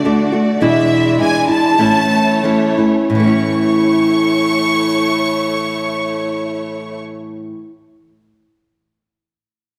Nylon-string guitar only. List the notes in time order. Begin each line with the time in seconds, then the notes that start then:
0.05 D3 A3 D4 F#4
0.32 A3 D4 F#4
0.60 E2 B2 E3 G#3 D4 E4
1.18 E3 G#3 D4 E4
1.48 E3 G#3 D4 E4
1.78 A2 E3 A3 C#4 E4
2.43 E3 A3 C#4 E4
2.78 A3 C#4 E4
3.10 A2
3.15 E3
3.20 A3
3.24 C#4 E4